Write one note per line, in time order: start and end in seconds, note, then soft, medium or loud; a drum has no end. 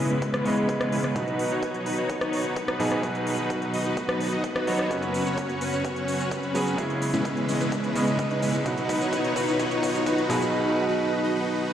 0.00 0.42 C#3 medium
0.00 1.14 C#3 medium
0.00 1.14 E3 medium
0.00 0.42 G#3 medium
0.00 1.14 G#3 medium
0.00 0.43 B3 medium
0.00 0.43 C#4 medium
0.00 0.43 E4 medium
0.00 8.62 B4 medium
0.00 riser medium
0.10 0.90 G#3 medium
0.10 0.90 B3 medium
0.10 0.90 C#4 medium
0.10 0.90 E4 medium
0.10 0.90 B4 loud
0.10 closed hi-hat soft
0.22 kick loud
0.22 closed hi-hat medium
0.34 cross-stick medium
0.34 closed hi-hat soft
0.44 1.12 C#3 medium
0.44 1.13 G#3 medium
0.44 1.13 B3 medium
0.44 1.13 C#4 medium
0.44 1.14 D#5 medium
0.44 open hi-hat loud
0.57 closed hi-hat soft
0.69 kick loud
0.69 closed hi-hat medium
0.81 cross-stick medium
0.81 closed hi-hat soft
0.92 1.06 G#3 medium
0.92 1.06 B3 medium
0.92 1.06 C#4 medium
0.92 1.06 E4 medium
0.92 1.06 B4 medium
0.92 open hi-hat loud
1.04 cross-stick medium
1.04 closed hi-hat soft
1.15 2.77 B2 medium
1.15 4.87 B2 medium
1.15 2.77 F#3 medium
1.15 6.74 F#3 medium
1.15 2.77 B3 medium
1.15 1.48 D#4 medium
1.15 4.87 D#4 medium
1.15 2.77 D#4 medium
1.15 1.48 F#4 medium
1.15 2.78 F#4 medium
1.15 1.48 B4 medium
1.15 kick loud
1.15 closed hi-hat medium
1.28 closed hi-hat soft
1.39 open hi-hat loud
1.51 1.83 D#4 medium
1.51 1.83 F#4 medium
1.51 1.83 C#5 loud
1.63 kick loud
1.63 closed hi-hat medium
1.74 closed hi-hat soft
1.86 1.96 D#4 medium
1.86 1.96 F#4 medium
1.86 1.96 B4 medium
1.86 open hi-hat loud
1.98 2.54 D#4 medium
1.98 2.54 F#4 medium
1.98 2.54 C#5 medium
2.10 kick loud
2.10 closed hi-hat medium
2.21 cross-stick medium
2.21 closed hi-hat soft
2.33 open hi-hat loud
2.45 closed hi-hat soft
2.56 3.36 D#4 medium
2.56 3.36 F#4 medium
2.56 3.36 B4 medium
2.56 kick loud
2.56 closed hi-hat medium
2.68 cross-stick medium
2.68 closed hi-hat soft
2.79 3.00 B2 medium
2.79 3.00 F#3 medium
2.79 3.01 B3 medium
2.79 3.01 D#4 medium
2.79 3.01 G#4 loud
2.79 open hi-hat loud
2.92 cross-stick medium
2.92 closed hi-hat soft
3.02 4.17 B2 medium
3.02 4.17 F#3 medium
3.02 4.18 B3 medium
3.02 4.18 D#4 medium
3.02 4.18 F#4 medium
3.02 kick loud
3.02 closed hi-hat medium
3.15 closed hi-hat soft
3.27 open hi-hat loud
3.38 3.71 D#4 medium
3.38 3.71 F#4 medium
3.38 3.71 B4 medium
3.38 closed hi-hat soft
3.50 kick loud
3.50 closed hi-hat medium
3.62 closed hi-hat soft
3.74 3.83 D#4 medium
3.74 3.83 F#4 medium
3.74 3.83 D#5 medium
3.74 open hi-hat loud
3.85 4.30 D#4 medium
3.85 4.30 F#4 medium
3.85 4.30 B4 medium
3.85 closed hi-hat soft
3.97 kick loud
3.97 closed hi-hat medium
4.09 cross-stick medium
4.09 closed hi-hat soft
4.20 open hi-hat loud
4.32 4.46 D#4 medium
4.32 4.46 F#4 medium
4.32 4.46 D#5 loud
4.32 closed hi-hat soft
4.44 kick loud
4.44 closed hi-hat medium
4.56 4.66 D#4 medium
4.56 4.66 F#4 medium
4.56 4.66 B4 medium
4.56 cross-stick medium
4.56 closed hi-hat soft
4.67 4.88 F#3 medium
4.67 4.88 B3 medium
4.67 4.88 D#4 loud
4.67 4.88 D#4 medium
4.67 4.88 F#4 medium
4.67 4.88 C#5 loud
4.67 open hi-hat loud
4.79 cross-stick medium
4.89 6.76 F#2 medium
4.89 6.51 F#3 medium
4.89 6.52 B3 medium
4.89 5.23 C#4 medium
4.89 6.76 C#4 medium
4.89 6.52 C#4 medium
4.89 5.23 F#4 medium
4.89 6.53 F#4 medium
4.89 5.23 B4 medium
4.89 kick loud
4.89 closed hi-hat medium
4.89 shaker soft
5.03 closed hi-hat soft
5.14 open hi-hat loud
5.14 shaker medium
5.26 5.58 C#4 medium
5.26 5.58 F#4 medium
5.26 5.58 C#5 loud
5.26 closed hi-hat soft
5.26 shaker soft
5.38 kick loud
5.38 closed hi-hat medium
5.38 shaker soft
5.49 closed hi-hat soft
5.61 5.71 C#4 medium
5.61 5.71 F#4 medium
5.61 5.71 B4 medium
5.61 open hi-hat loud
5.61 shaker medium
5.73 6.29 C#4 medium
5.73 6.29 F#4 medium
5.73 6.29 C#5 medium
5.73 closed hi-hat soft
5.73 shaker soft
5.85 kick loud
5.85 closed hi-hat medium
5.85 shaker soft
5.96 closed hi-hat soft
6.08 open hi-hat loud
6.08 shaker medium
6.20 closed hi-hat soft
6.20 shaker soft
6.31 6.77 C#4 medium
6.31 6.77 F#4 medium
6.31 6.77 B4 medium
6.31 kick loud
6.31 closed hi-hat medium
6.31 shaker soft
6.43 closed hi-hat soft
6.54 6.75 F#3 medium
6.54 6.75 B3 medium
6.54 6.76 C#4 medium
6.54 6.76 G#4 loud
6.54 open hi-hat loud
6.54 shaker medium
6.67 shaker soft
6.77 7.92 C#3 medium
6.77 8.64 C#3 medium
6.77 8.64 E3 medium
6.77 7.92 G#3 medium
6.77 8.64 G#3 medium
6.77 7.93 B3 medium
6.77 7.93 C#4 medium
6.77 7.93 E4 loud
6.77 kick loud
6.77 closed hi-hat medium
6.77 shaker soft
6.90 closed hi-hat soft
7.02 open hi-hat loud
7.02 shaker medium
7.14 7.46 G#3 medium
7.14 7.46 B3 medium
7.14 7.46 C#4 medium
7.14 7.46 E4 medium
7.14 7.46 B4 medium
7.14 shaker soft
7.25 kick loud
7.25 closed hi-hat medium
7.25 shaker soft
7.37 closed hi-hat soft
7.49 7.58 G#3 medium
7.49 7.58 B3 medium
7.49 7.58 C#4 medium
7.49 7.58 E4 medium
7.49 7.58 D#5 medium
7.49 open hi-hat loud
7.49 shaker medium
7.60 8.40 G#3 medium
7.60 8.40 B3 medium
7.60 8.40 C#4 medium
7.60 8.40 E4 medium
7.60 8.40 B4 loud
7.60 closed hi-hat soft
7.60 shaker soft
7.72 kick loud
7.72 closed hi-hat medium
7.72 shaker soft
7.84 closed hi-hat soft
7.94 8.62 C#3 medium
7.94 8.63 G#3 medium
7.94 8.63 B3 medium
7.94 8.63 C#4 medium
7.94 8.64 D#5 medium
7.94 open hi-hat loud
7.94 shaker medium
8.07 closed hi-hat soft
8.07 shaker soft
8.19 kick loud
8.19 closed hi-hat medium
8.19 shaker soft
8.31 closed hi-hat soft
8.42 8.56 G#3 medium
8.42 8.56 B3 medium
8.42 8.56 C#4 medium
8.42 8.56 E4 medium
8.42 8.56 B4 medium
8.42 open hi-hat loud
8.42 shaker medium
8.54 closed hi-hat soft
8.54 shaker soft
8.65 10.27 B2 medium
8.65 10.51 B2 medium
8.65 10.27 F#3 medium
8.65 10.51 F#3 medium
8.65 10.27 B3 medium
8.65 10.51 D#4 medium
8.65 8.98 D#4 medium
8.65 10.27 D#4 medium
8.65 8.98 F#4 medium
8.65 10.28 F#4 medium
8.65 10.51 B4 medium
8.65 8.98 B4 medium
8.65 kick loud
8.65 closed hi-hat medium
8.65 shaker soft
8.78 closed hi-hat soft
8.89 kick loud
8.89 open hi-hat loud
8.89 shaker medium
9.01 9.33 D#4 medium
9.01 9.33 F#4 medium
9.01 9.33 C#5 loud
9.01 closed hi-hat soft
9.01 shaker soft
9.13 kick loud
9.13 closed hi-hat medium
9.13 shaker soft
9.24 closed hi-hat soft
9.36 9.46 D#4 medium
9.36 9.46 F#4 medium
9.36 9.46 B4 medium
9.36 kick loud
9.36 open hi-hat loud
9.36 shaker medium
9.48 10.04 D#4 medium
9.48 10.04 F#4 medium
9.48 10.04 C#5 medium
9.48 closed hi-hat soft
9.48 shaker soft
9.60 kick loud
9.60 closed hi-hat loud
9.60 shaker soft
9.71 closed hi-hat soft
9.83 kick loud
9.83 open hi-hat loud
9.83 shaker medium
9.95 closed hi-hat soft
9.95 shaker soft
10.06 10.86 D#4 medium
10.06 10.86 F#4 medium
10.06 10.86 B4 medium
10.06 kick loud
10.06 closed hi-hat medium
10.06 shaker soft
10.18 closed hi-hat soft
10.29 10.50 B2 medium
10.29 10.50 F#3 medium
10.29 10.51 B3 medium
10.29 10.51 D#4 medium
10.29 10.51 G#4 loud
10.29 kick loud
10.29 open hi-hat loud
10.29 shaker medium
10.42 closed hi-hat soft
10.42 shaker soft
10.89 11.21 D#4 medium
10.89 11.21 F#4 medium
10.89 11.21 B4 medium
11.24 11.33 D#4 medium
11.24 11.33 F#4 medium
11.24 11.33 D#5 medium
11.35 11.73 D#4 medium
11.35 11.73 F#4 medium
11.35 11.73 B4 loud
11.47 reverse cymbal medium